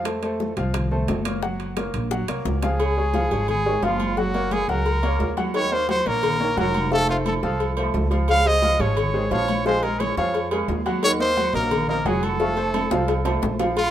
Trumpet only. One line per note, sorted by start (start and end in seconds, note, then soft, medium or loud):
2.64 3.45 G#4 medium
3.50 3.86 G#4 loud
3.84 4.20 F4 medium
4.18 4.54 F#4 loud
4.53 4.69 G#4 loud
4.70 5.34 A#4 medium
5.55 5.74 C#5 loud
5.73 5.89 C5 loud
5.90 6.09 C5 loud
6.07 6.58 A#4 loud
6.59 6.90 A#4 loud
6.93 7.08 A4 loud
7.10 7.18 F4 medium
7.27 7.35 A4 medium
7.44 7.75 A4 medium
8.30 8.49 F5 loud
8.47 8.83 D#5 loud
8.81 9.32 C#5 medium
9.33 9.64 C#5 loud
9.67 9.85 C5 loud
9.83 10.02 A#4 medium
10.00 10.17 C#5 loud
10.17 10.49 C#5 medium
11.04 11.11 C#5 loud
11.21 11.52 C5 loud
11.55 11.87 A#4 loud
11.89 12.08 A#4 loud
12.07 12.25 G#4 medium
12.24 13.43 A4 loud
13.78 13.90 F4 loud